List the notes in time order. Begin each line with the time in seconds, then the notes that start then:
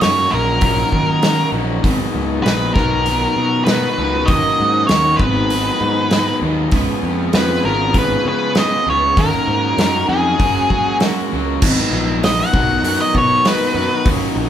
0.01 F#2 D#3 F#3 A#3 C#4 D#4 F#4 A#4 C#5, snare, open hi-hat
0.30 A#1 D#3 F#3 A#3 C#4 D#4 F#4 A#4
0.61 D#3 F#3 A#3 C#4 D#4 F#4 A#4, kick, open hi-hat
0.92 D#3, kick
1.22 D#3 F#3 A#3 C#4 D#4 F#4 A#4, snare, open hi-hat
1.52 A#1 D#3 F#3 A#3 C#4 D#4 F#4 A#4
1.83 G#1 G#2 D#3 F#3 B3 D#4 G#4 B4, kick, open hi-hat
2.15 C#2
2.43 A#1 G#2 D#3 F#3 B3 D#4 G#4 B4, snare, open hi-hat
2.74 B1 B2 D#3 F#3 B3 D#4 F#4 A#4, kick, snare
3.06 B2 D#3 F#3 B3 D#4 F#4 A#4, open hi-hat
3.36 B2
3.65 B2 D#3 F#3 F#4 B4, snare, open hi-hat
3.70 B3 D#4 A#4
3.98 C#2 B2 D#3 F#3 B3 D#4 F#4 A#4
4.26 D#2 A#3 D#4 F#4 D#5, kick, open hi-hat
4.30 D#3 F#3 C#4 D#4 A#4
4.60 G#2
4.87 D#2 D#3 F#3 A#3 F#4 C#5, snare, open hi-hat
4.91 C#4 D#4 A#4
5.16 G#1 B4, kick
5.20 G#2 D#3 F#3 B3 D#4 G#4 B4
5.50 G#2 D#3 F#3 B3 D#4 G#4, open hi-hat
5.55 B4
5.81 G#2
6.11 G#2 D#3 F#3 B3 D#4 G#4 B4, snare, open hi-hat
6.42 D#2 G#2 D#3 F#3 B3 D#4 G#4 B4
6.71 C#2 C#3 F3 G#3 B3 C#4 F4 G#4 B4, kick, open hi-hat
7.03 F2
7.32 F2 C#3 F3 G#3 B3 C#4 G#4 B4, snare, open hi-hat
7.36 F4 B4
7.64 G#1 C#3 F3 G#3 B3 C#4 F4 G#4 A#4 B4
7.94 C#3 F3 G#3 B3 C#4 F4 G#4 B4, kick, open hi-hat
7.99 B4
8.25 C#3 B4
8.55 C#3 F3 G#3 B3 C#4 F4 G#4 D#5, snare, open hi-hat
8.59 B4
8.86 C#2 C#3 F3 G#3 B3 C#4 F4 G#4 B4
8.90 C#5
9.17 D#2 D#3 F#3 A#3 C#4 D#4 F#4 A#4, kick, open hi-hat
9.47 G#2
9.78 F#2 D#3 F#3 A#3 C#4 D#4 F#4 A#4, snare, open hi-hat
10.09 F2 D#3 F#3 A#3 C#4 D#4 F#4 G#4
10.13 A#4
10.39 F#2 F#3 G#3 A#3 C#4 F#4 A#4, kick, open hi-hat
10.70 F#3, kick
11.00 F#3 G#3 A#3 C#4 F#4 A#4, snare, open hi-hat
11.32 C#2 F#3 G#3 A#3 C#4 F#4 A#4
11.62 G#1 G#2 D#3 F#3 B3 D#4 B4, kick, crash
11.91 A#1
12.22 G#2 D#3 F#3 B3 D#4 B4 D#5, snare, open hi-hat
12.40 F#5
12.53 B1 B2 D#3 F#3 B3 D#4 F#4 A#4, kick
12.83 F#2 B2 D#3 F#3 B3 D#4 F#4 A#4, open hi-hat
13.01 D#5
13.14 B2 C#5, kick
13.45 B2 D#3 F#3 B3 D#4 F#4 A#4 B4, snare, open hi-hat
13.75 F#2 B2 D#3 F#3 B3 F#4 A#4
13.79 D#4
14.06 D#2 D#3 F#3 A#3 C#4 D#4 F#4 A#4, kick, open hi-hat
14.36 A#1